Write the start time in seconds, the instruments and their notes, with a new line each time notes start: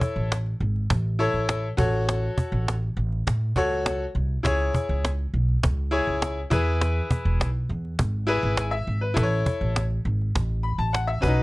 Already playing: grand piano E4 A4 C#5
0.01 cajon bass
0.16 upright bass A1
0.32 cajon slap
0.46 cajon slap
0.60 upright bass G#1, cajon slap
0.76 cajon slap
0.90 upright bass A1, cajon bass, cajon slap
1.19 grand piano E4 A4 C#5, cajon slap
1.33 upright bass A1
1.49 cajon slap
1.77 upright bass A1, grand piano F#4 A4 C#5, cajon bass
2.09 cajon slap
2.38 cajon bass
2.52 upright bass A1
2.68 cajon slap
2.83 cajon slap
2.97 upright bass A1, cajon slap
3.12 cajon slap
3.27 upright bass A2, cajon bass, cajon slap
3.56 upright bass C#2, grand piano F#4 A4 C#5, cajon bass, cajon slap
3.86 cajon slap
4.15 upright bass C2, cajon slap
4.43 upright bass C#2, grand piano E4 G#4 C#5, cajon bass, cajon slap
4.74 cajon bass
4.89 upright bass C#2
5.05 cajon slap
5.19 cajon slap
5.34 upright bass B1, cajon slap
5.49 cajon slap
5.63 upright bass C#2, cajon bass, cajon slap
5.91 grand piano E4 G#4 C#5, cajon slap
6.07 upright bass C#2
6.22 cajon slap
6.50 upright bass E2, grand piano E4 G#4 B4, cajon bass
6.81 cajon slap
7.11 cajon bass
7.25 upright bass E1
7.40 upright bass B1, cajon slap
7.55 cajon slap
7.69 upright bass E2, cajon slap
7.85 cajon slap
7.99 upright bass G#1, cajon bass, cajon slap
8.27 grand piano E4 G#4 B4
8.43 upright bass G#1
8.57 grand piano G#5, cajon slap
8.71 grand piano E5
8.87 upright bass G#1, cajon slap
9.01 grand piano B4
9.14 upright bass A1, grand piano E4 A4 B4, cajon bass, cajon slap
9.23 grand piano C#5
9.46 cajon bass
9.61 upright bass A1
9.76 cajon slap
9.91 cajon slap
10.05 upright bass G#1, cajon slap
10.21 cajon slap
10.35 upright bass A1, cajon bass, cajon slap
10.63 grand piano B5, cajon slap
10.78 upright bass A1, grand piano A5
10.93 grand piano F#5, cajon slap
11.07 grand piano E5
11.21 upright bass B1, grand piano C#4 F#4 B4, cajon bass
11.27 grand piano D#4